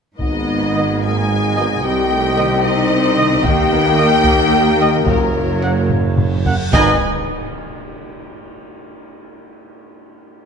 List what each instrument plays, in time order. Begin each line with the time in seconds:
0.18 tuba G#1, double bass section G#1, cello section G#2, woodwind section B3 D#4 G#4 D#5, viola section B3, french horn section D#4, violin section D#5, taiko
0.75 trombone section D#3 B3, trumpet D#5
1.01 viola section A#3, french horn section G#4, violin section G#5
1.31 viola section G#3
1.57 trombone section D#3 B3, viola section F#3, trumpet D#5
1.82 tuba C2, double bass section C2, cello section C3, viola section G3, woodwind section C4 G4, french horn section G4, violin section G5
2.10 viola section A3
2.37 trombone section D#3 C4, viola section A#3, trumpet D#5
2.63 viola section C4, french horn section D#4, violin section D#5
3.17 trombone section D#3 C4, trumpet D#5
3.43 tuba D#2, double bass section D#2, cello section D#3, viola section A#3, woodwind section A#3 A#4, french horn section G4, violin section G5, taiko
3.71 viola section B3
3.98 trombone section D#3 A#3, viola section A#3, trumpet D#5
4.24 viola section A#3, taiko
4.80 trombone section D#3 A#3, trumpet D#5
5.05 tuba F#1, double bass section F#1, cello section F#2, viola section F#3, french horn section A#3, woodwind section F#4 C#5, violin section A#4, taiko, reverse cymbal
5.62 trombone section C#3 A#3, trumpet F#5
5.90 taiko low-mid
6.17 taiko low-mid
6.45 trombone section C#3 A#3, trumpet F#5, taiko low
6.72 tuba G#1, double bass section G#1, cello section G#2, trombone section D#3 B3, french horn section G#3, woodwind section B3 D#4 G#4 D#5, viola section D#4 B4, trumpet D#5, violin section G#5, taiko, impact